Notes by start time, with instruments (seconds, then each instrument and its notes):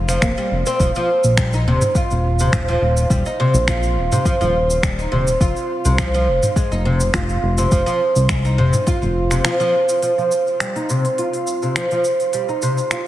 Already playing: analog synth bass F1
0.08 oud F3, finger snap, shaker
0.22 analog synth bass F1, oud A#3, finger snap, kick, shaker
0.37 oud G3, shaker
0.52 analog synth bass F1
0.66 oud C4, shaker
0.80 analog synth bass D#1, oud F3, kick, shaker
0.95 oud F3, shaker
1.24 analog synth bass A#1, shaker
1.37 oud G3, finger snap, kick, shaker
1.53 oud D#4, shaker
1.66 analog synth bass D#1, oud C3
1.81 mid tom, shaker
1.95 oud F4, kick, shaker
2.11 analog synth bass D#1, shaker
2.39 oud C3, shaker
2.53 analog synth bass D#1, oud F3, finger snap, kick, mid tom, shaker
2.68 oud F3, shaker
2.82 analog synth bass D#1
2.97 shaker
3.10 analog synth bass D#1, oud G3, kick, shaker
3.25 oud D#4, shaker
3.40 oud C3
3.54 analog synth bass A#1, shaker
3.68 oud F4, finger snap, kick, shaker
3.83 shaker
3.97 analog synth bass D#1
4.12 oud C3, mid tom, shaker
4.25 oud F3, kick, shaker
4.41 analog synth bass D#1, oud F3, mid tom, shaker
4.70 shaker
4.83 analog synth bass D#1, oud G3, finger snap, kick, shaker
4.99 oud D#4, shaker
5.12 analog synth bass D#1, oud C3
5.27 shaker
5.41 analog synth bass F1, oud F4, kick, shaker
5.56 shaker
5.85 analog synth bass C2, oud C3, shaker
5.98 oud F3, finger snap, kick, shaker
6.14 oud F3, shaker
6.28 analog synth bass F1
6.43 mid tom, shaker
6.56 oud G#3, kick, shaker
6.72 analog synth bass F1, oud D#4, shaker
6.85 oud C3
7.00 shaker
7.14 analog synth bass F1, oud F4, finger snap, kick, mid tom, shaker
7.29 shaker
7.43 analog synth bass F1
7.58 oud C3, shaker
7.72 analog synth bass F1, oud F3, kick, shaker
7.86 oud F3, shaker
8.16 analog synth bass C2, shaker
8.29 oud G#3, finger snap, kick, shaker
8.45 oud D#4, shaker
8.58 analog synth bass F1, oud C3
8.73 mid tom, shaker
8.87 oud F4, kick, shaker
9.02 analog synth bass F1, mid tom, shaker
9.31 oud C3, finger snap, shaker
9.45 oud F3, finger snap, shaker
9.60 oud F3, shaker
9.89 shaker
10.02 oud F3, open hi-hat, shaker
10.18 oud F3, shaker
10.32 shaker
10.47 shaker
10.60 oud G3, finger snap, open hi-hat, shaker
10.76 oud D#4, open hi-hat, shaker
10.90 oud C3, shaker
11.05 open hi-hat, shaker
11.18 oud F4, open hi-hat, shaker
11.33 open hi-hat, shaker
11.47 shaker
11.62 oud C3, shaker
11.76 oud F3, finger snap, open hi-hat, shaker
11.91 oud F3, open hi-hat, shaker
12.04 shaker
12.20 open hi-hat, shaker
12.33 oud G3, open hi-hat, shaker
12.49 oud D#4, shaker
12.62 oud C3, shaker
12.78 shaker
12.91 oud F4, finger snap, open hi-hat, shaker